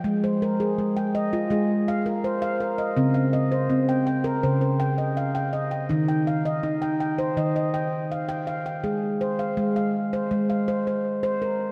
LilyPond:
<<
  \new Staff \with { instrumentName = "Handpan" } { \time 4/4 \key aes \major \tempo 4 = 82 << { g''16 c''16 bes'16 aes'8 g''16 ees''8 aes'8. bes'16 c''8 bes'16 ees''16~ | ees''16 f''16 ees''16 c''8 g''16 g''8 c''16 c''8 ees''16 f''8 ees''16 g''16~ | g''16 g''16 f''16 ees''8 g''16 g''8 ees''16 ees''8. f''8 f''16 g''16 | aes'8 c''16 f''8 f''8. r16 f''8 c''8. bes'8 | } \\ { r4 aes8 r16 f'8 r16 f''8 r16 f''8 r16 | c'8 r8 c'8 r16 bes'8 r16 g''8 r16 g''8 r16 | ees'8 r8 ees'8 r16 c''8 r16 g''8 r16 g''8 r16 | aes8 r4 r16 c''8 r16 c''8 r16 c''8 r16 | } >> }
  \new Staff \with { instrumentName = "Handpan" } { \clef bass \time 4/4 \key aes \major aes2 aes2 | des2 des2 | ees2 ees2 | r4 aes4 aes2 | }
>>